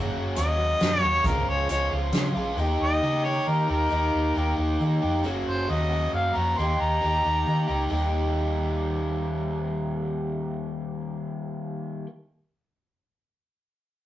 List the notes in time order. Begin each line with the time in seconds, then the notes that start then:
Already playing: F#2 C#3 F#3 A#3 C#4 F#4
0.15 F#1
0.35 D#2 F#2 C#3 F#3 A#3 C#4 F#4 D#5, closed hi-hat
0.58 F#3 A#3 C#4 F#4
0.79 F#2 F#3 A#3 C#4 F#4, snare, closed hi-hat
1.02 D#2 F#3 A#3 C#4 F#4 C#5
1.23 C#2 C#3 F3 G#3 C#4 F4 A#4, kick, closed hi-hat
1.48 C#2 C#5
1.68 C#2 C#3 F3 G#3 C#4 F4 C#5, closed hi-hat
1.91 C#2 G#3 C#4 F4
2.12 C#3 F3 G#3 C#4 F4, snare, closed hi-hat
2.35 A#1 G#3 C#4 F4
2.57 D#2 D#3 A#3 D#4 G4
2.81 D#2 D#5
3.02 C#3 D#3 A#3 D#4 G4
3.24 A#3 D#4 G4 C#5
3.46 D#3 A#3 D#4 G4 A#4
3.68 D#2 A#3 D#4 G4 A#4
3.89 D#2 D#3 A#3 D#4 G4
4.14 D#2
4.35 D#2 D#3 A#3 D#4 G4
4.56 D#2 A#3 D#4 G4
4.79 D#3 A#3 D#4 G4
5.02 F2 A#3 D#4 G4
5.24 F#1 F#2 C#3 F#3 A#3 C#4 F#4
5.47 F#1 C5
5.67 D#2 F#2 C#3 F#3 A#3 C#4 F#4 D#5
5.89 F#3 A#3 C#4 F#4
6.12 F#2 F#3 A#3 C#4 F#4 F5
6.34 F2 F#3 A#3 C#4 F#4 A#5
6.58 D#2 D#3 A#3 D#4 G4 C6
6.80 D#2 A#5
7.01 D#2 D#3 A#3 D#4 G4
7.24 D#2 A#3 D#4 G4
7.46 D#3 A#3 D#4 G4
7.67 C#2 A#3 D#4 G4
7.89 D#2 D#3 G3 A#3 G4
7.95 D#4 G4